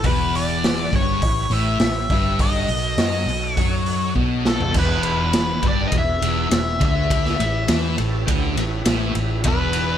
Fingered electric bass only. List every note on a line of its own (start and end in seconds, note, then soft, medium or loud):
0.04 0.88 E1 medium
0.93 1.20 G1 medium
1.22 1.49 A1 medium
1.50 1.78 A1 medium
1.80 2.08 A1 medium
2.09 2.64 G1 medium
2.69 2.96 B1 medium
2.98 3.25 F#2 medium
3.26 3.54 B1 medium
3.58 4.12 F#2 medium
4.16 4.71 B1 medium
4.74 5.59 E1 medium
5.63 5.90 G1 medium
5.92 6.20 E1 medium
6.22 6.49 E1 medium
6.51 6.79 E1 medium
6.80 7.35 D2 medium
7.40 7.67 A1 medium
7.69 7.96 E2 medium
7.98 8.26 A1 medium
8.28 8.55 D2 medium
8.56 8.84 A1 medium
8.86 9.13 A1 medium
9.15 9.43 A1 medium
9.45 9.98 E1 medium